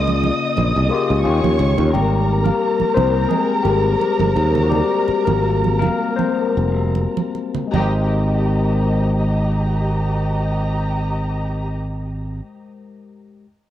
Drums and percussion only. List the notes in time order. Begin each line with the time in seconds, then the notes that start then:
0.07 high conga
0.24 high conga, low conga
0.57 muted conga, high conga
1.44 high conga
1.59 muted conga
1.78 low conga
1.95 low conga
2.46 high conga
2.80 high conga
2.97 high conga, low conga
3.31 high conga
3.65 muted conga
4.01 muted conga
4.20 high conga
4.36 muted conga
4.55 low conga
4.72 low conga
5.08 muted conga
5.27 high conga
5.64 high conga
5.82 muted conga, high conga, low conga
6.19 muted conga, high conga
6.95 muted conga
7.17 high conga
7.35 muted conga
7.54 low conga
7.74 high conga